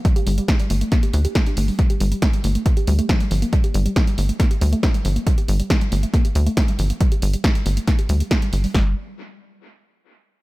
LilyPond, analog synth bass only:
\new Staff \with { instrumentName = "Analog synth bass" } { \clef bass \time 4/4 \key g \minor \tempo 4 = 138 r8 g,,8 r8 g,,8 r8 d,8 r8 g,,8 | r8 g,,8 r8 g,,8 r8 d,8 r8 g,,8 | r8 g,,8 r8 g,,8 r8 d,8 r8 g,,8 | r8 g,,8 r8 g,,8 r8 d,8 r8 g,,8 |
r8 g,,8 r8 g,,8 r8 d,8 r8 g,,8 | g,,8 r2. r8 | }